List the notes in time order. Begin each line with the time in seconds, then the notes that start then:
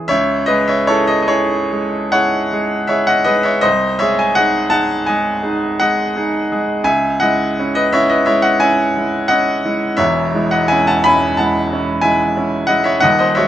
Already playing: E3 E4 G#4
0.08 C#2 C#5 E5
0.46 G#3 G#4 B4 D#5
0.68 C#5 E5
0.87 E4 G#4 A4 C#5
1.07 D#5
1.22 D#5
1.28 E4 G#4 C#5
1.72 G#3 G#4
2.12 E4 G#4 C#5 F#5
2.52 G#3 G#4
2.87 E4 G#4 C#5 E5
3.07 D#5 F#5
3.25 G#3 G#4 B4 D#5
3.43 C#5 E5
3.61 C2 C5 D#5
3.99 G#3 G#4 C#5 E5
4.19 E5 G#5
4.35 D#4 G#4 D#5 F#5
4.70 D#4 G#4 F#5 A5
5.06 G#3 G#4 D#5 G#5
5.43 D#4 G#4
5.80 G#3 G#4 D#5 F#5
6.16 D#4 G#4
6.52 G#3 G#4
6.84 C#2 E5 G#5
7.20 G#3 E4 D#5 F#5
7.59 C#4 E4
7.75 B4 D#5
7.93 C#4 E4 C#5 E5
8.09 B4 D#5
8.26 G#3 E4 C#5 E5
8.42 D#5 F#5
8.60 C#4 E4 E5 G#5
8.97 G#3 E4
9.28 C#4 E4 D#5 F#5
9.65 G#3 E4
9.97 E1 E2 C#5 E5
10.35 G#3 E4
10.51 D#5 F#5
10.68 C#4 E4 E5 G#5
10.87 F#5 A5
11.04 C#4 E4 G#5 B5
11.37 G#3 E4 F#5 A5
11.73 C#4 E4
12.01 G#3 E4 E5 G#5
12.37 C#4 E4
12.67 G#3 E4 D#5 F#5
12.84 C#5 E5
13.00 D#1 D#2 D#5 F#5
13.19 C5 D#5
13.35 G#3 F#4 C#5 E5